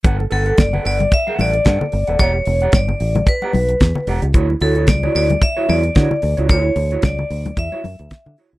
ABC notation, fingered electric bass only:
X:1
M:4/4
L:1/16
Q:"Swing 16ths" 1/4=112
K:Glyd
V:1 name="Fingered electric bass" clef=bass
G,,,2 G,,,2 F,,,2 G,,,2 z2 A,,,2 G,, z G,,, ^D,,, | E,,,2 E,,,2 G,,,2 A,,,2 z2 B,,,2 E,, z E,,, C,, | D,,2 D,,2 C,,2 D,,2 z2 E,,2 D, z D,, C,, | D,,2 D,,2 C,,2 D,,2 E,, z F,, D,, z D, z C,, |]